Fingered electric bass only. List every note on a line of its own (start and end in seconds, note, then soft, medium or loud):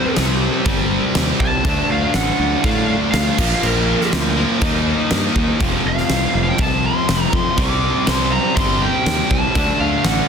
0.18 0.48 C2 medium
0.66 0.96 G1 medium
1.16 1.31 D#2 medium
1.40 1.65 C2 medium
1.65 1.80 D2 loud
1.90 2.05 D2 medium
2.15 2.30 A1 medium
2.39 2.55 D2 loud
2.64 2.95 A2 loud
3.14 3.29 D2 medium
3.38 3.54 A#1 medium
3.63 3.94 A#1 medium
4.13 4.43 D2 medium
4.61 4.92 D#2 medium
5.11 5.27 G2 loud
5.36 5.51 D#2 medium
5.61 5.76 F1 loud
5.85 6.01 F1 medium
6.10 6.25 C2 medium
6.35 6.50 F1 medium
6.59 6.89 C2 medium
7.09 7.24 F1 loud
7.33 7.48 F2 medium
7.58 7.88 C2 loud
8.07 8.38 C2 medium
8.56 8.87 G1 loud
9.06 9.21 D#2 loud
9.31 9.46 C2 medium
9.56 9.71 D2 loud
9.80 9.95 D2 medium
10.04 10.20 A1 loud